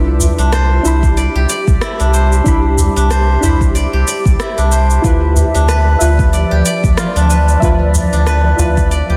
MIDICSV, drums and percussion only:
0, 0, Header, 1, 3, 480
1, 0, Start_track
1, 0, Tempo, 645161
1, 1831, Time_signature, 4, 2, 24, 8
1, 6822, End_track
2, 0, Start_track
2, 0, Title_t, "Udu"
2, 148, Note_on_c, 9, 64, 86
2, 222, Note_off_c, 9, 64, 0
2, 2067, Note_on_c, 9, 64, 81
2, 2141, Note_off_c, 9, 64, 0
2, 2560, Note_on_c, 9, 64, 78
2, 2635, Note_off_c, 9, 64, 0
2, 3988, Note_on_c, 9, 64, 98
2, 4062, Note_off_c, 9, 64, 0
2, 5915, Note_on_c, 9, 64, 93
2, 5989, Note_off_c, 9, 64, 0
2, 6391, Note_on_c, 9, 64, 84
2, 6465, Note_off_c, 9, 64, 0
2, 6822, End_track
3, 0, Start_track
3, 0, Title_t, "Drums"
3, 153, Note_on_c, 9, 82, 72
3, 228, Note_off_c, 9, 82, 0
3, 289, Note_on_c, 9, 82, 29
3, 363, Note_off_c, 9, 82, 0
3, 391, Note_on_c, 9, 37, 100
3, 393, Note_on_c, 9, 82, 39
3, 465, Note_off_c, 9, 37, 0
3, 468, Note_off_c, 9, 82, 0
3, 634, Note_on_c, 9, 82, 75
3, 708, Note_off_c, 9, 82, 0
3, 767, Note_on_c, 9, 36, 92
3, 770, Note_on_c, 9, 82, 29
3, 841, Note_off_c, 9, 36, 0
3, 845, Note_off_c, 9, 82, 0
3, 872, Note_on_c, 9, 82, 42
3, 947, Note_off_c, 9, 82, 0
3, 1112, Note_on_c, 9, 82, 79
3, 1186, Note_off_c, 9, 82, 0
3, 1247, Note_on_c, 9, 36, 101
3, 1248, Note_on_c, 9, 82, 31
3, 1321, Note_off_c, 9, 36, 0
3, 1323, Note_off_c, 9, 82, 0
3, 1350, Note_on_c, 9, 37, 98
3, 1352, Note_on_c, 9, 82, 39
3, 1424, Note_off_c, 9, 37, 0
3, 1427, Note_off_c, 9, 82, 0
3, 1488, Note_on_c, 9, 82, 28
3, 1563, Note_off_c, 9, 82, 0
3, 1592, Note_on_c, 9, 82, 67
3, 1666, Note_off_c, 9, 82, 0
3, 1729, Note_on_c, 9, 82, 31
3, 1803, Note_off_c, 9, 82, 0
3, 1830, Note_on_c, 9, 36, 113
3, 1832, Note_on_c, 9, 82, 43
3, 1904, Note_off_c, 9, 36, 0
3, 1906, Note_off_c, 9, 82, 0
3, 2071, Note_on_c, 9, 82, 76
3, 2145, Note_off_c, 9, 82, 0
3, 2209, Note_on_c, 9, 82, 32
3, 2283, Note_off_c, 9, 82, 0
3, 2311, Note_on_c, 9, 37, 94
3, 2313, Note_on_c, 9, 82, 44
3, 2385, Note_off_c, 9, 37, 0
3, 2388, Note_off_c, 9, 82, 0
3, 2552, Note_on_c, 9, 82, 75
3, 2627, Note_off_c, 9, 82, 0
3, 2686, Note_on_c, 9, 36, 97
3, 2690, Note_on_c, 9, 82, 31
3, 2760, Note_off_c, 9, 36, 0
3, 2764, Note_off_c, 9, 82, 0
3, 2794, Note_on_c, 9, 82, 45
3, 2868, Note_off_c, 9, 82, 0
3, 3034, Note_on_c, 9, 82, 80
3, 3108, Note_off_c, 9, 82, 0
3, 3166, Note_on_c, 9, 36, 101
3, 3170, Note_on_c, 9, 82, 33
3, 3240, Note_off_c, 9, 36, 0
3, 3244, Note_off_c, 9, 82, 0
3, 3271, Note_on_c, 9, 37, 99
3, 3274, Note_on_c, 9, 82, 44
3, 3346, Note_off_c, 9, 37, 0
3, 3348, Note_off_c, 9, 82, 0
3, 3408, Note_on_c, 9, 82, 29
3, 3482, Note_off_c, 9, 82, 0
3, 3511, Note_on_c, 9, 82, 69
3, 3585, Note_off_c, 9, 82, 0
3, 3647, Note_on_c, 9, 82, 36
3, 3722, Note_off_c, 9, 82, 0
3, 3750, Note_on_c, 9, 36, 117
3, 3753, Note_on_c, 9, 82, 44
3, 3825, Note_off_c, 9, 36, 0
3, 3827, Note_off_c, 9, 82, 0
3, 3991, Note_on_c, 9, 82, 69
3, 4066, Note_off_c, 9, 82, 0
3, 4129, Note_on_c, 9, 82, 29
3, 4204, Note_off_c, 9, 82, 0
3, 4230, Note_on_c, 9, 37, 91
3, 4232, Note_on_c, 9, 82, 43
3, 4304, Note_off_c, 9, 37, 0
3, 4307, Note_off_c, 9, 82, 0
3, 4472, Note_on_c, 9, 82, 84
3, 4546, Note_off_c, 9, 82, 0
3, 4606, Note_on_c, 9, 36, 108
3, 4608, Note_on_c, 9, 82, 31
3, 4681, Note_off_c, 9, 36, 0
3, 4683, Note_off_c, 9, 82, 0
3, 4713, Note_on_c, 9, 82, 45
3, 4788, Note_off_c, 9, 82, 0
3, 4953, Note_on_c, 9, 82, 84
3, 5027, Note_off_c, 9, 82, 0
3, 5087, Note_on_c, 9, 36, 103
3, 5089, Note_on_c, 9, 82, 33
3, 5161, Note_off_c, 9, 36, 0
3, 5164, Note_off_c, 9, 82, 0
3, 5189, Note_on_c, 9, 37, 93
3, 5192, Note_on_c, 9, 82, 44
3, 5263, Note_off_c, 9, 37, 0
3, 5266, Note_off_c, 9, 82, 0
3, 5329, Note_on_c, 9, 82, 30
3, 5404, Note_off_c, 9, 82, 0
3, 5433, Note_on_c, 9, 82, 78
3, 5508, Note_off_c, 9, 82, 0
3, 5569, Note_on_c, 9, 82, 33
3, 5644, Note_off_c, 9, 82, 0
3, 5671, Note_on_c, 9, 36, 114
3, 5674, Note_on_c, 9, 82, 40
3, 5746, Note_off_c, 9, 36, 0
3, 5748, Note_off_c, 9, 82, 0
3, 5912, Note_on_c, 9, 82, 78
3, 5987, Note_off_c, 9, 82, 0
3, 6048, Note_on_c, 9, 82, 30
3, 6123, Note_off_c, 9, 82, 0
3, 6149, Note_on_c, 9, 37, 89
3, 6152, Note_on_c, 9, 82, 42
3, 6224, Note_off_c, 9, 37, 0
3, 6226, Note_off_c, 9, 82, 0
3, 6392, Note_on_c, 9, 82, 81
3, 6466, Note_off_c, 9, 82, 0
3, 6527, Note_on_c, 9, 36, 104
3, 6528, Note_on_c, 9, 82, 33
3, 6602, Note_off_c, 9, 36, 0
3, 6602, Note_off_c, 9, 82, 0
3, 6633, Note_on_c, 9, 82, 44
3, 6707, Note_off_c, 9, 82, 0
3, 6822, End_track
0, 0, End_of_file